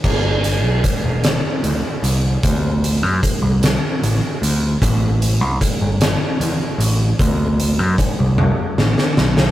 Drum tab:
CC |x-----------|------------|------------|------------|
HH |--x-x-x-x-x-|x-x-x-x-x-x-|x-x-x-x-x-x-|x-x-x-------|
SD |------o-----|------o-----|------o-----|--------oooo|
T1 |------------|------------|------------|------o-----|
BD |o---o-------|o---o-------|o---o-------|o---o-------|